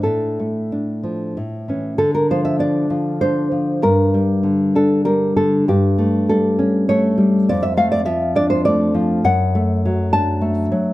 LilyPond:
\new Staff \with { instrumentName = "Nylon-string guitar" } { \time 3/4 \key d \minor \tempo 4 = 99 << { <d' a'>2~ <d' a'>8 r8 | a'16 bes'16 c''16 e''16 d''4 c''4 | bes'4. a'8 bes'8 a'8 | g'4 a'4 cis''4 |
d''16 e''16 f''16 d''16 e''8 d''16 c''16 d''8 r8 | \key d \phrygian fis''4. a''4. | } \\ { a,8 a8 d'8 f8 a,8 <e cis'>8 | d8 f8 d'8 f8 d'8 f8 | g,8 g8 d8 d'8 g8 d8 | g,8 a8 g8 cis'8 a8 g8 |
f,8 a8 f8 d'8 a8 f8 | fis,8 a8 fis8 d'8 a8 fis8 | } >> }